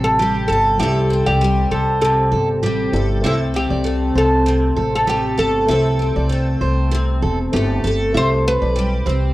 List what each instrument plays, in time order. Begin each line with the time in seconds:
Already playing: upright bass A1, twelve-string acoustic guitar C3 G3 C4 A4, upright piano G3 E4 A4
0.04 oud A4
0.19 twelve-string acoustic guitar G3, steel-string acoustic guitar G4
0.48 upright bass G1, oud A4, twelve-string acoustic guitar A4
0.78 upright bass C2, twelve-string acoustic guitar C3 A4, upright piano G3 C4 E4, oud G4, steel-string acoustic guitar E5
0.82 upright piano A4
1.10 twelve-string acoustic guitar C4
1.26 upright bass C2, oud G4, steel-string acoustic guitar D5
1.41 twelve-string acoustic guitar G3
1.71 upright bass C2, oud A4, steel-string acoustic guitar C5
2.02 twelve-string acoustic guitar C3, oud A4
2.32 upright bass G1, steel-string acoustic guitar A4
2.63 upright bass A1, twelve-string acoustic guitar G3, steel-string acoustic guitar G4
2.92 upright bass G1, upright piano G3 C4 E4 A4, twelve-string acoustic guitar A4
3.22 upright bass C2, twelve-string acoustic guitar C3 A4, upright piano A3 C4 E4 C5, steel-string acoustic guitar E5
3.26 oud E4
3.54 twelve-string acoustic guitar C4, oud G4
3.70 upright bass C2, steel-string acoustic guitar D5
3.84 twelve-string acoustic guitar A3
4.15 upright bass C2, oud A4, steel-string acoustic guitar C5
4.46 twelve-string acoustic guitar C3
4.76 upright bass A1, steel-string acoustic guitar A4
4.95 oud A4
5.07 twelve-string acoustic guitar A3, steel-string acoustic guitar G4, oud G4
5.38 upright bass G1, twelve-string acoustic guitar A4, oud A4
5.66 upright bass C2, twelve-string acoustic guitar C3 A4, upright piano A3 C4 E4, steel-string acoustic guitar E5
5.70 upright piano C5
5.99 twelve-string acoustic guitar C4
6.16 upright bass C2, steel-string acoustic guitar D5
6.29 twelve-string acoustic guitar A3
6.61 upright bass C2, steel-string acoustic guitar C5
6.92 twelve-string acoustic guitar C3
7.22 upright bass E1, steel-string acoustic guitar A4
7.52 upright bass G1, upright piano A3 C4 E4 C5, twelve-string acoustic guitar A3, steel-string acoustic guitar G4
7.84 upright bass G1, twelve-string acoustic guitar A4
8.13 upright bass C2, upright piano A3 E4 G4, steel-string acoustic guitar E5
8.17 upright piano C4, oud C5
8.48 oud B4
8.62 upright bass B1, steel-string acoustic guitar D5
8.76 twelve-string acoustic guitar G3
9.06 upright bass C2, steel-string acoustic guitar C4, twelve-string acoustic guitar C4